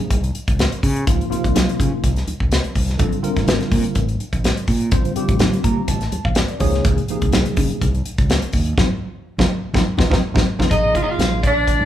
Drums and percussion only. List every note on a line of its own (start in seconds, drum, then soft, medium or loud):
0.10 kick medium
0.10 closed hi-hat medium
0.10 muted conga soft
0.24 closed hi-hat soft
0.35 closed hi-hat medium
0.35 muted conga soft
0.48 kick medium
0.48 closed hi-hat soft
0.59 snare loud
0.59 closed hi-hat medium
0.59 high conga medium
0.72 closed hi-hat soft
0.83 kick medium
0.83 open hi-hat medium
0.96 closed hi-hat soft
1.07 kick loud
1.07 closed hi-hat medium
1.07 muted conga soft
1.21 closed hi-hat soft
1.32 closed hi-hat medium
1.44 kick medium
1.44 closed hi-hat soft
1.55 snare loud
1.55 closed hi-hat medium
1.55 muted conga soft
1.55 high conga medium
1.69 closed hi-hat soft
1.80 kick medium
1.80 closed hi-hat medium
2.04 kick medium
2.04 closed hi-hat medium
2.04 muted conga soft
2.16 snare soft
2.16 closed hi-hat soft
2.27 closed hi-hat medium
2.27 muted conga soft
2.27 high conga medium
2.40 kick medium
2.52 snare medium
2.52 closed hi-hat medium
2.52 high conga medium
2.64 closed hi-hat soft
2.75 kick medium
2.75 open hi-hat medium
2.75 low conga medium
2.89 snare soft
2.89 closed hi-hat soft
2.99 kick loud
2.99 closed hi-hat medium
3.12 closed hi-hat soft
3.24 closed hi-hat medium
3.37 kick medium
3.37 snare soft
3.37 closed hi-hat soft
3.48 snare loud
3.48 closed hi-hat medium
3.48 muted conga soft
3.48 high conga medium
3.60 snare soft
3.60 closed hi-hat soft
3.71 kick medium
3.71 open hi-hat medium
3.71 high conga medium
3.84 closed hi-hat soft
3.95 kick medium
3.95 closed hi-hat medium
3.95 muted conga soft
4.09 closed hi-hat soft
4.20 closed hi-hat medium
4.20 muted conga soft
4.33 kick medium
4.33 closed hi-hat soft
4.44 snare medium
4.44 closed hi-hat medium
4.44 high conga medium
4.57 closed hi-hat soft
4.68 kick medium
4.68 open hi-hat medium
4.81 closed hi-hat soft
4.91 kick loud
4.91 closed hi-hat medium
4.91 muted conga soft
5.05 closed hi-hat soft
5.16 closed hi-hat medium
5.28 kick medium
5.28 closed hi-hat soft
5.39 snare loud
5.39 closed hi-hat medium
5.39 muted conga soft
5.39 high conga loud
5.53 closed hi-hat soft
5.64 kick medium
5.64 closed hi-hat medium
5.88 kick medium
5.88 closed hi-hat medium
5.88 muted conga soft
6.01 snare soft
6.01 closed hi-hat soft
6.12 closed hi-hat medium
6.12 muted conga soft
6.12 high conga medium
6.25 kick medium
6.35 snare loud
6.35 closed hi-hat medium
6.35 high conga medium
6.48 closed hi-hat soft
6.60 kick medium
6.60 open hi-hat medium
6.60 low conga medium
6.73 snare soft
6.73 closed hi-hat soft
6.85 kick loud
6.85 closed hi-hat medium
6.85 muted conga soft
6.98 closed hi-hat soft
7.08 closed hi-hat medium
7.22 kick medium
7.22 closed hi-hat soft
7.32 snare loud
7.32 closed hi-hat medium
7.32 muted conga soft
7.32 high conga medium
7.46 closed hi-hat soft
7.57 kick medium
7.57 open hi-hat medium
7.57 high conga medium
7.70 closed hi-hat soft
7.81 kick medium
7.81 closed hi-hat medium
7.81 muted conga soft
7.95 closed hi-hat soft
8.05 closed hi-hat medium
8.05 muted conga soft
8.18 kick medium
8.18 closed hi-hat soft
8.30 snare loud
8.30 closed hi-hat medium
8.30 high conga medium
8.42 closed hi-hat soft
8.53 kick medium
8.53 open hi-hat medium
8.66 closed hi-hat soft
8.78 kick medium
8.78 snare medium
8.78 high conga medium
9.38 kick medium
9.38 snare loud
9.38 high conga loud
9.74 kick medium
9.74 snare medium
9.74 high conga loud
9.97 kick medium
9.97 snare medium
9.97 high conga medium
10.10 kick loud
10.10 snare medium
10.10 high conga loud
10.35 kick medium
10.35 snare medium
10.35 high conga medium
10.59 kick medium
10.59 snare medium
10.59 high conga loud
10.71 kick medium
10.71 closed hi-hat medium
10.71 muted conga soft
10.95 kick medium
10.95 closed hi-hat soft
11.19 snare loud
11.19 closed hi-hat medium
11.19 high conga medium
11.43 kick medium
11.43 closed hi-hat medium
11.43 muted conga soft
11.67 kick medium
11.67 closed hi-hat medium
11.67 muted conga soft